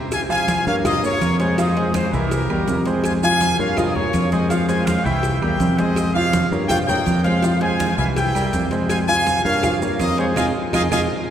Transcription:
0.12 trumpet section F5 G#5, cowbell, high conga, claves, maracas
0.29 grand piano F3 F4 F5, trumpet section F5 G#5, high conga, maracas
0.48 cowbell, high conga, maracas
0.66 fingered electric bass G2, grand piano A#3 A#4 C#5, trumpet section C#5 F5, high conga, maracas
0.84 grand piano F3 F4 F5, trumpet section A#4 D#5, cowbell, high conga, low conga, claves, maracas
1.03 grand piano A#3 A#4 C#5, trumpet section A#4 C#5, high conga, maracas
1.21 fingered electric bass F2, cowbell, high conga, claves, maracas
1.40 grand piano G#3 G#4 C5, trumpet section A#4 C#5, cowbell, maracas
1.58 grand piano F3 F4 F5, trumpet section C5 D#5, cowbell, high conga, maracas
1.76 grand piano G#3 G#4 C5, cowbell, high conga
1.94 trumpet section G#4 C5, cowbell, high conga, claves, maracas
2.13 fingered electric bass C2, grand piano E3 E4 E5, trumpet section G4 A#4, high conga, maracas
2.31 cowbell, high conga, maracas
2.50 fingered electric bass E2, grand piano G3 G4 A#4, high conga, claves
2.68 fingered electric bass F2, cowbell, high conga, maracas
2.85 grand piano G#3 G#4 C5, cowbell, high conga, maracas
3.04 trumpet section F5 G#5, cowbell, high conga, claves, maracas
3.23 grand piano F3 F4 F5, trumpet section F5 G#5, high conga, maracas
3.40 cowbell, high conga, maracas
3.58 fingered electric bass G2, grand piano A#3 A#4 C#5, trumpet section C#5 F5, high conga, maracas
3.77 grand piano F3 F4 F5, trumpet section A#4 D#5, cowbell, high conga, low conga, claves, maracas
3.94 grand piano A#3 A#4 C#5, trumpet section A#4 C#5, high conga, low conga
4.13 fingered electric bass F2, cowbell, high conga, claves, maracas
4.31 grand piano G#3 G#4 C5, trumpet section C5 D#5, cowbell, high conga, maracas
4.49 grand piano F3 F4 F5, trumpet section C5 F5, cowbell, high conga, maracas
4.68 grand piano G#3 G#4 C5, trumpet section F5 G#5, cowbell, high conga, maracas
4.85 trumpet section C5 F5, cowbell, high conga, claves, maracas
5.04 fingered electric bass C2, grand piano E3 E4 E5, trumpet section E5 G5, high conga, maracas
5.23 cowbell, high conga, maracas
5.41 fingered electric bass E2, grand piano G3 G4 A#4, trumpet section E5 G5, high conga, claves
5.60 fingered electric bass F2, cowbell, high conga, maracas
5.78 grand piano G#3 G#4 C5, trumpet section C5 D#5, cowbell, high conga, maracas
5.96 cowbell, high conga, claves, maracas
6.14 grand piano F3 F4 F5, trumpet section C#5 F5, high conga
6.33 cowbell, high conga, maracas
6.52 fingered electric bass G2, grand piano A#3 A#4 C#5, high conga, maracas
6.68 grand piano F3 F4 F5, trumpet section C#5 G5, cowbell, high conga, low conga, claves, maracas
6.88 grand piano A#3 A#4 C#5, trumpet section D#5 G5, high conga, low conga, maracas
7.06 fingered electric bass F2, cowbell, high conga, claves, maracas
7.24 grand piano G#3 G#4 C5, trumpet section C5 F5, cowbell, high conga, maracas
7.42 grand piano F3 F4 F5, cowbell, high conga, maracas
7.60 grand piano G#3 G#4 C5, trumpet section F5 G#5, cowbell, high conga
7.79 cowbell, high conga, claves, maracas
7.97 fingered electric bass C2, grand piano E3 E4 E5, trumpet section F5 G#5, high conga, maracas
8.15 trumpet section E5 G5, cowbell, high conga, maracas
8.35 grand piano G3 G4 A#4, high conga, claves, maracas
8.53 fingered electric bass F2, cowbell, high conga, maracas
8.71 grand piano G#3 G#4 C5, cowbell, high conga, maracas
8.88 trumpet section F5 G#5, cowbell, high conga, claves, maracas
9.07 grand piano F3 F4 F5, trumpet section F5 G#5, high conga
9.26 cowbell, high conga, maracas
9.44 fingered electric bass G2, grand piano A#3 A#4 C#5, trumpet section C#5 F5, high conga, maracas
9.63 grand piano F3 F4 F5, cowbell, high conga, low conga, claves, maracas
9.82 grand piano A#3 A#4 C#5, high conga, maracas
9.99 fingered electric bass F2, trumpet section A#4 D#5, cowbell, high conga, claves, maracas
10.18 grand piano G#3 G#4 C5, trumpet section A#4 C#5, cowbell, maracas
10.36 fingered electric bass F2, grand piano D#4 F4 G#4, trumpet section D#5 F5 G#5, cowbell, low conga, claves, maracas
10.73 fingered electric bass F2, grand piano D#4 F4 G#4, trumpet section D#5 F5 G#5, cowbell, low conga, claves, maracas
10.91 fingered electric bass F2, grand piano D#4 F4 G#4, trumpet section D#5 F5 G#5, cowbell, low conga, claves, maracas

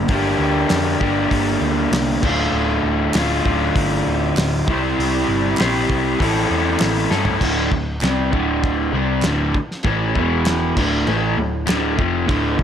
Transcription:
Already playing: overdriven electric guitar D4
0.08 picked electric bass G1, overdriven electric guitar G2 D3 G3 A#3 D4, kick, open hi-hat
0.13 overdriven electric guitar G4
0.39 picked electric bass D2
0.69 picked electric bass F2, snare, clap, open hi-hat
1.00 picked electric bass G1, overdriven electric guitar G2 D3 G3 A#3 D4 G4, kick
1.31 picked electric bass G1, kick, open hi-hat
1.60 picked electric bass D2
1.92 picked electric bass C2, snare, clap, open hi-hat
2.22 picked electric bass D1, overdriven electric guitar D2 A2 D3 A3, kick, crash
2.27 overdriven electric guitar F4
2.53 picked electric bass D1
2.83 picked electric bass D1
3.14 picked electric bass D1, overdriven electric guitar D2 A2 D3 A3, snare, clap, open hi-hat
3.19 overdriven electric guitar F4
3.45 picked electric bass D1, kick
3.76 picked electric bass G1, kick, open hi-hat
4.07 picked electric bass D1
4.37 picked electric bass D1, snare, clap, open hi-hat
4.67 picked electric bass C2, overdriven electric guitar C3 G3 C4 E4 G4, kick
4.71 overdriven electric guitar C5
4.98 picked electric bass C2, open hi-hat
5.28 picked electric bass G1
5.57 picked electric bass A#1, overdriven electric guitar C3 G3 C4 E4 G4 C5, snare, clap, open hi-hat
5.89 picked electric bass C2, kick
6.19 picked electric bass A1, overdriven electric guitar A2 E3 A3 C4 E4 A4, kick, open hi-hat
6.50 picked electric bass E2
6.79 picked electric bass A1, snare, clap, open hi-hat
7.11 picked electric bass G2, overdriven electric guitar E3 A3 C4 E4 A4, snare
7.15 overdriven electric guitar A2
7.25 floor tom
7.41 picked electric bass D1, overdriven electric guitar D2 A2 D3, kick, crash
7.71 picked electric bass D1, overdriven electric guitar D2 A2, kick
8.01 picked electric bass C2, overdriven electric guitar C3 G3 C4, snare, clap, crash
8.31 picked electric bass D1, overdriven electric guitar D2 A2 D3, kick
8.64 kick, crash
8.92 picked electric bass C2, overdriven electric guitar C3 G3 C4
9.22 picked electric bass D1, overdriven electric guitar D2 A2 D3, snare, clap, crash
9.54 muted picked electric bass stroke, muted overdriven electric guitar stroke, kick
9.71 snare
9.83 picked electric bass A1, overdriven electric guitar A2 E3 A3, kick, crash
10.15 picked electric bass E1, overdriven electric guitar E2 B2 E3, kick
10.46 snare, clap, crash
10.76 picked electric bass D1, overdriven electric guitar D2 A2 D3, kick, crash
11.07 picked electric bass A1, overdriven electric guitar A2 E3 A3, crash
11.37 picked electric bass D1, overdriven electric guitar D2 A2
11.66 picked electric bass D1, overdriven electric guitar D2 A2 D3, snare, clap, crash
11.97 picked electric bass F1, overdriven electric guitar F2 C3 F3, kick
12.27 picked electric bass D1, overdriven electric guitar D2 A2 D3, kick, crash
12.57 picked electric bass D1, overdriven electric guitar D2 A2, kick

